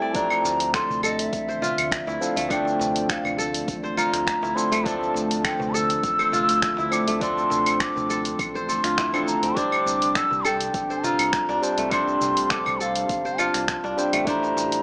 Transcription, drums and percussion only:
0.15 kick, open hi-hat, shaker
0.30 darbuka ka, claves, shaker
0.45 darbuka tek, shaker
0.60 open hi-hat, shaker
0.74 finger snap, kick, open hi-hat, shaker
0.90 darbuka tek, darbuka dum, shaker
1.03 claves, shaker
1.19 open hi-hat, shaker
1.33 kick, open hi-hat, shaker
1.49 darbuka ka, shaker
1.62 darbuka ka, darbuka tek, darbuka dum, shaker
1.78 open hi-hat, claves, shaker
1.92 finger snap, kick, open hi-hat, shaker
2.08 darbuka tek, shaker
2.22 shaker
2.37 open hi-hat, darbuka tek, shaker
2.50 kick, open hi-hat, claves, shaker
2.65 darbuka ka, shaker
2.80 darbuka tek, darbuka dum, shaker
2.96 open hi-hat, shaker
3.09 finger snap, kick, open hi-hat, shaker
3.24 darbuka tek, darbuka dum, claves, shaker
3.39 shaker
3.54 open hi-hat, shaker
3.67 kick, open hi-hat, darbuka ka, shaker
3.85 shaker
3.97 claves, shaker
4.14 finger snap, open hi-hat, shaker
4.27 finger snap, kick, open hi-hat, shaker
4.43 darbuka tek, shaker
4.57 darbuka tek, shaker
4.72 open hi-hat, darbuka tek, claves, shaker
4.86 kick, open hi-hat, shaker
5.01 darbuka ka, shaker
5.14 darbuka tek, shaker
5.31 open hi-hat, darbuka ka, shaker
5.45 finger snap, kick, open hi-hat, claves, shaker
5.60 darbuka tek, darbuka dum, shaker
5.75 shaker
5.90 open hi-hat, shaker
6.03 kick, open hi-hat, shaker
6.19 darbuka ka, claves, shaker
6.32 darbuka ka, darbuka tek, darbuka dum, shaker
6.49 open hi-hat, shaker
6.62 finger snap, kick, open hi-hat, shaker
6.77 darbuka tek, shaker
6.92 claves, shaker
7.08 open hi-hat, darbuka tek, shaker
7.21 kick, open hi-hat, shaker
7.38 darbuka ka, shaker
7.50 darbuka tek, darbuka dum, shaker
7.66 open hi-hat, claves, shaker
7.80 finger snap, kick, open hi-hat, shaker
7.96 darbuka tek, darbuka dum, shaker
8.10 shaker
8.25 open hi-hat, shaker
8.39 kick, open hi-hat, darbuka ka, claves, shaker
8.56 shaker
8.69 shaker
8.84 finger snap, open hi-hat, shaker
8.98 finger snap, kick, open hi-hat, shaker
9.14 darbuka tek, claves, shaker
9.27 darbuka tek, shaker
9.43 open hi-hat, darbuka tek, shaker
9.57 kick, open hi-hat, shaker
9.72 darbuka ka, claves, shaker
9.87 darbuka tek, shaker
10.02 open hi-hat, shaker
10.15 finger snap, kick, open hi-hat, shaker
10.31 darbuka tek, darbuka dum, shaker
10.45 claves, shaker
10.61 open hi-hat, shaker
10.74 kick, open hi-hat, shaker
10.90 darbuka ka, shaker
11.04 darbuka ka, darbuka tek, darbuka dum, shaker
11.19 open hi-hat, claves, shaker
11.33 finger snap, kick, open hi-hat, shaker
11.49 darbuka tek, shaker
11.63 shaker
11.78 open hi-hat, darbuka tek, shaker
11.91 kick, open hi-hat, claves, shaker
12.07 darbuka ka, shaker
12.21 darbuka tek, darbuka dum, shaker
12.37 open hi-hat, shaker
12.50 finger snap, kick, open hi-hat, shaker
12.66 darbuka tek, darbuka dum, claves, shaker
12.81 shaker
12.96 open hi-hat, shaker
13.09 kick, open hi-hat, shaker
13.26 shaker
13.38 claves, shaker
13.54 finger snap, open hi-hat, shaker
13.68 finger snap, kick, open hi-hat, shaker
13.84 darbuka tek, shaker
13.98 darbuka tek, shaker
14.13 open hi-hat, darbuka tek, claves, shaker
14.27 kick, open hi-hat, shaker
14.43 darbuka ka, shaker
14.57 darbuka tek, shaker
14.72 open hi-hat, shaker

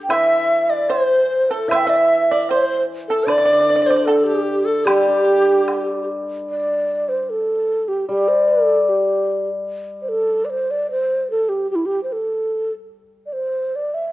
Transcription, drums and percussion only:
0.10 high woodblock
0.91 low woodblock
1.71 high woodblock
2.49 low woodblock
3.28 high woodblock
4.08 low woodblock
4.87 high woodblock
5.68 high woodblock, low woodblock

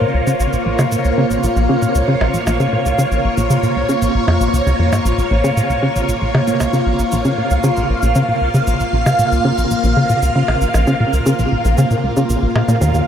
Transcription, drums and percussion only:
0.27 cabasa
0.40 cabasa
0.53 cabasa
0.79 cabasa, percussion blips
0.92 cabasa
1.05 cabasa
1.31 cabasa
1.43 cabasa
1.56 cabasa
1.82 cabasa
1.95 cabasa
2.21 percussion blips
2.34 cabasa
2.47 cabasa, percussion blips
2.60 cabasa
2.86 cabasa
2.99 cabasa
3.12 cabasa
3.38 cabasa
3.50 cabasa
3.63 cabasa
3.89 cabasa
4.02 cabasa
4.28 percussion blips
4.41 cabasa
4.54 cabasa
4.67 cabasa
4.93 cabasa, percussion blips
5.06 cabasa
5.19 cabasa
5.44 cabasa
5.57 cabasa
5.70 cabasa
5.96 cabasa
6.09 cabasa
6.35 percussion blips
6.47 cabasa
6.60 cabasa, percussion blips
6.73 cabasa
6.99 cabasa
7.12 cabasa
7.25 cabasa
7.50 cabasa
7.63 cabasa
7.77 cabasa
8.02 cabasa
8.15 cabasa
8.54 cabasa
8.67 cabasa
8.80 cabasa
9.06 cabasa, percussion blips
9.19 cabasa
9.32 cabasa
9.58 cabasa
9.71 cabasa
9.84 cabasa
10.10 cabasa
10.22 cabasa
10.48 percussion blips
10.61 cabasa
10.74 cabasa, percussion blips
10.87 cabasa
11.13 cabasa
11.26 cabasa
11.39 cabasa
11.65 cabasa
11.78 cabasa
11.91 cabasa
12.17 cabasa
12.30 cabasa
12.56 percussion blips
12.69 cabasa
12.82 cabasa
12.94 cabasa

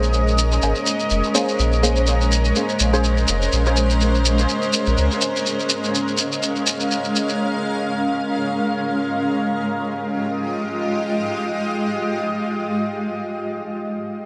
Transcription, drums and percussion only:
0.03 shekere
0.13 shekere
0.28 shekere
0.38 shekere
0.52 shekere
0.62 shekere
0.75 shekere
0.86 shekere
1.00 shekere
1.10 shekere
1.24 shekere
1.35 shekere
1.49 shekere
1.59 shekere
1.73 shekere
1.84 shekere
1.96 shekere
2.07 shekere
2.21 shekere
2.32 shekere
2.45 shekere
2.56 shekere
2.69 shekere
2.80 shekere
2.94 shekere
3.04 shekere
3.17 shekere
3.28 shekere
3.42 shekere
3.52 shekere
3.66 shekere
3.77 shekere
3.90 shekere
4.01 shekere
4.15 shekere
4.25 shekere
4.39 shekere
4.49 shekere
4.62 shekere
4.73 shekere
4.86 shekere
4.98 shekere
5.11 shekere
5.21 shekere
5.36 shekere
5.46 shekere
5.60 shekere
5.69 shekere
5.84 shekere
5.95 shekere
6.08 shekere
6.18 shekere
6.32 shekere
6.43 shekere
6.56 shekere
6.67 shekere
6.80 shekere
6.91 shekere
7.04 shekere
7.16 shekere
7.29 shekere

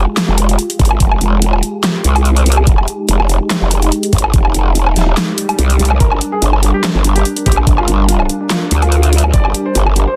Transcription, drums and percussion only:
0.17 snare, clap, closed hi-hat
0.38 closed hi-hat
0.49 closed hi-hat
0.59 closed hi-hat
0.70 closed hi-hat
0.79 kick, closed hi-hat
0.85 closed hi-hat
0.91 low woodblock
1.00 kick, closed hi-hat
1.11 low woodblock
1.21 closed hi-hat
1.42 closed hi-hat
1.53 low woodblock
1.63 closed hi-hat
1.84 snare, clap, closed hi-hat
2.04 closed hi-hat
2.16 closed hi-hat, low woodblock
2.25 closed hi-hat
2.37 closed hi-hat
2.46 closed hi-hat
2.52 closed hi-hat
2.57 low woodblock
2.67 kick, closed hi-hat
2.78 low woodblock
2.88 closed hi-hat
3.09 closed hi-hat
3.20 low woodblock
3.29 closed hi-hat
3.50 snare, clap, closed hi-hat
3.71 closed hi-hat
3.82 closed hi-hat
3.92 closed hi-hat
4.03 closed hi-hat
4.13 kick, closed hi-hat
4.18 closed hi-hat
4.24 low woodblock
4.34 kick, closed hi-hat
4.45 low woodblock
4.54 closed hi-hat
4.75 closed hi-hat
4.87 low woodblock
4.96 snare, closed hi-hat
5.17 snare, clap, closed hi-hat
5.38 closed hi-hat
5.49 closed hi-hat, low woodblock
5.59 closed hi-hat
5.70 closed hi-hat
5.79 closed hi-hat
5.85 closed hi-hat
5.91 low woodblock
6.00 kick, closed hi-hat
6.12 low woodblock
6.21 closed hi-hat
6.42 closed hi-hat
6.53 low woodblock
6.63 closed hi-hat
6.84 snare, clap, closed hi-hat
7.04 closed hi-hat
7.16 closed hi-hat
7.25 closed hi-hat
7.37 closed hi-hat
7.46 kick, closed hi-hat
7.52 closed hi-hat
7.57 low woodblock
7.67 kick, closed hi-hat
7.78 low woodblock
7.88 closed hi-hat
8.09 closed hi-hat
8.20 low woodblock
8.29 closed hi-hat
8.50 snare, clap, closed hi-hat
8.71 closed hi-hat
8.82 closed hi-hat, low woodblock
8.92 closed hi-hat
9.03 closed hi-hat
9.13 closed hi-hat
9.18 closed hi-hat
9.24 low woodblock
9.34 kick, closed hi-hat
9.45 low woodblock
9.54 closed hi-hat
9.75 closed hi-hat
9.86 low woodblock
9.96 closed hi-hat

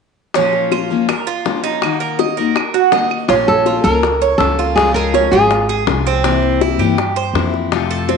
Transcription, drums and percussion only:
0.34 high bongo
0.53 high bongo
0.72 high bongo, claves
0.90 high bongo
1.09 high bongo, claves
1.46 high bongo, low bongo
1.64 high bongo
1.82 high bongo, claves
2.19 high bongo
2.37 high bongo
2.56 high bongo, claves
2.74 high bongo
2.92 high bongo, low bongo
3.10 high bongo, claves
3.29 high bongo
3.47 high bongo
3.66 high bongo
3.85 high bongo
4.03 high bongo
4.40 high bongo, low bongo
4.60 high bongo
4.78 high bongo
5.14 high bongo
5.33 high bongo
5.51 high bongo
5.69 high bongo
5.87 high bongo, low bongo
6.06 high bongo
6.24 high bongo
6.43 high bongo
6.61 high bongo
6.80 high bongo
6.98 high bongo
7.35 high bongo, low bongo
7.54 high bongo
7.72 high bongo
8.09 high bongo

